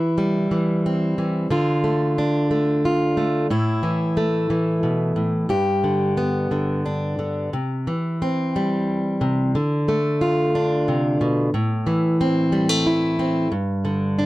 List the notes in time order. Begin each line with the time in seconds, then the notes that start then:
Already playing: E3 E4
0.18 G3
0.51 E3
0.86 C4
1.18 E3
1.50 D3 F4
1.84 A3
2.18 D4
2.51 A3
2.85 F4
3.17 A3
3.50 A2 E4
3.83 E3
4.17 A3
4.50 E3
4.83 B2
5.16 A2
5.49 G2 G4
5.84 D3
6.17 B3
6.51 D3
6.86 D4
7.19 D3
7.53 C3
7.87 E3
8.22 C4
8.56 G3
9.21 C3
9.55 D3
9.88 A3
10.21 F4
10.55 D4
10.88 C3
11.21 B2
11.54 A2
11.87 E3
12.21 C4
12.52 G3
12.69 A3
12.87 E4
13.19 C4
13.52 G2
13.85 D3
14.19 D4